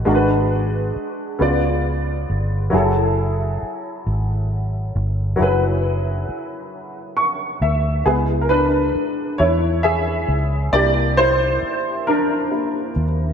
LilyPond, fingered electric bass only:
\new Staff \with { instrumentName = "Fingered electric bass" } { \clef bass \time 6/8 \key fis \minor \tempo 4. = 45 gis,,4 r8 cis,4 g,,8 | fis,,4 r8 gis,,4 g,,8 | fis,,4 r4. d,8 | cis,4 r8 e,4 cis,8 |
c,4 r4. dis,8 | }